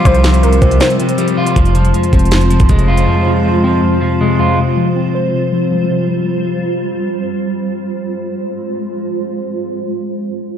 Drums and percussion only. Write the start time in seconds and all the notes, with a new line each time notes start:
0.05 kick, closed hi-hat
0.15 closed hi-hat
0.24 snare, clap, closed hi-hat
0.34 closed hi-hat
0.43 closed hi-hat
0.53 closed hi-hat
0.62 kick, closed hi-hat, open hi-hat
0.71 closed hi-hat
0.80 snare, clap, closed hi-hat
0.90 closed hi-hat
1.00 closed hi-hat
1.09 closed hi-hat
1.18 closed hi-hat
1.28 closed hi-hat
1.47 closed hi-hat
1.56 kick, closed hi-hat
1.65 closed hi-hat
1.75 closed hi-hat
1.85 closed hi-hat
1.94 closed hi-hat
2.03 closed hi-hat
2.13 kick, closed hi-hat
2.19 closed hi-hat
2.25 closed hi-hat
2.31 snare, clap, closed hi-hat
2.41 closed hi-hat
2.51 closed hi-hat
2.60 kick, closed hi-hat
2.69 kick, closed hi-hat
2.79 closed hi-hat
2.97 closed hi-hat